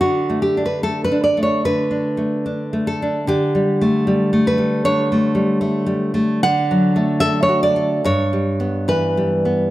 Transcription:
\new Staff \with { instrumentName = "Nylon-string guitar" } { \time 4/4 \key d \major \tempo 4 = 74 << { fis'8 g'16 b'16 a'16 b'16 d''16 cis''16 b'4. a'8 | g'4. b'8 cis''2 | fis''4 e''16 cis''16 d''8 cis''4 b'4 | } \\ { \tuplet 3/2 { d8 a8 d'8 a8 d'8 a8 d8 d'8 a8 d'8 a8 d'8 } | \tuplet 3/2 { d8 g8 a8 g8 a8 g8 d8 a8 g8 a8 g8 a8 } | \tuplet 3/2 { d8 fis8 a8 a'8 fis'8 a'8 g,8 g8 b8 e8 g8 b8 } | } >> }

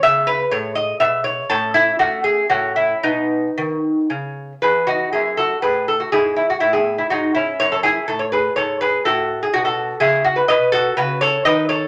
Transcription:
<<
  \new Staff \with { instrumentName = "Lute" } { \time 3/4 \key e \major \tempo 4 = 122 << { e''8 b'8 cis''8 dis''8 e''8 cis''8 | a'8 e'8 fis'8 gis'8 fis'8 e'8 | dis'2 r4 | <gis' b'>8 <dis' fis'>8 <e' gis'>8 <fis' a'>8 <gis' b'>8 a'16 fis'16 |
<e' gis'>8 e'16 fis'16 e'16 <e' gis'>8 e'16 <dis' fis'>8 <cis' e'>8 | cis''16 a'16 <e' gis'>8 a'16 cis''16 <gis' b'>8 <a' cis''>8 <gis' b'>8 | <fis' a'>8. gis'16 fis'16 <fis' a'>8. <e' gis'>8 fis'16 b'16 | <b' dis''>8 <fis' a'>8 <fis' b'>8 <a' cis''>8 <b' dis''>8 <a' cis''>8 | } \\ { gis2. | cis'2 cis'4 | b2. | r2. |
r2. | r2. | r2. | r2. | } >> }
  \new Staff \with { instrumentName = "Lute" } { \clef bass \time 3/4 \key e \major cis4 a,4 b,4 | a,4 a4 a,4 | b,4 dis4 cis4 | e,4 fis,4 a,4 |
gis,4 a,4 gis,4 | fis,4 a,4 gis,4 | a,4 b,4 cis4 | b,4 cis4 dis4 | }
>>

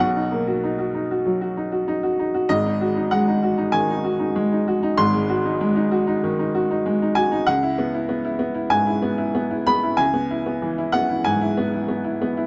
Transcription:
\new Staff \with { instrumentName = "Upright piano" } { \time 4/4 \key cis \dorian \tempo 4 = 96 << { fis''2.~ fis''8 r8 | dis''4 fis''4 gis''2 | bis''2.~ bis''8 gis''8 | fis''2 gis''4. b''8 |
gis''4. fis''8 gis''4. r8 | } \\ { <b,, b, fis'>16 dis'16 ais16 fis'16 dis'16 fis'16 dis'16 fis'16 fis16 fis'16 dis'16 fis'16 dis'16 fis'16 dis'16 fis'16 | <gis,, gis,>16 dis'16 fis'16 dis'16 gis16 dis'16 fis'16 dis'16 dis16 dis'16 fis'16 dis'16 gis16 dis'16 fis'16 dis'16 | <gis,, gis,>16 gis16 fis'16 dis'16 gis16 dis'16 fis'16 dis'16 dis16 dis'16 fis'16 dis'16 gis16 dis'16 fis'16 dis'16 | cis,16 e'16 b16 e'16 b16 e'16 b16 e'16 gis,16 e'16 b16 e'16 b16 e'16 b16 e'16 |
cis,16 b16 e'16 b16 e16 e'16 b16 e'16 gis,16 e'16 b16 e'16 b16 e'16 b16 e'16 | } >> }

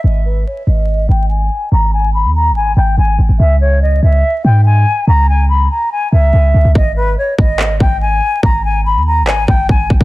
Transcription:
<<
  \new Staff \with { instrumentName = "Flute" } { \time 4/4 \key gis \minor \tempo 4 = 143 dis''8 b'8 cis''8 dis''4 g''8 gis''4 | ais''8 gis''8 b''8 ais''8 gis''8 g''8 gis''8 r8 | e''8 cis''8 dis''8 e''4 g''8 gis''4 | ais''8 gis''8 b''8 ais''8 gis''8 e''4. |
dis''8 b'8 cis''8 dis''4 g''8 gis''4 | ais''8 gis''8 b''8 ais''8 gis''8 g''8 gis''8 r8 | }
  \new Staff \with { instrumentName = "808-style bass" } { \clef bass \time 4/4 \key gis \minor gis,,4 r8 gis,,4 gis,,4 r8 | gis,,4~ gis,,16 dis,8~ dis,32 gis,,8~ gis,,32 gis,,8 gis,,8 gis,,16 gis,,16 | cis,4. cis,8 r8 gis,4 r8 | cis,4. r4 cis,8 cis,8 cis,16 cis,16 |
gis,,4 r8 gis,,4 gis,,4 r8 | gis,,4~ gis,,16 dis,8~ dis,32 gis,,8~ gis,,32 gis,,8 gis,,8 gis,,16 gis,,16 | }
  \new DrumStaff \with { instrumentName = "Drums" } \drummode { \time 4/4 r4 r4 r4 r4 | r4 r4 r4 r4 | r4 r4 r4 r4 | r4 r4 r4 r4 |
bd4 r8 bd8 hc8 bd8 r4 | bd4 r4 hc8 bd8 bd8 bd16 bd16 | }
>>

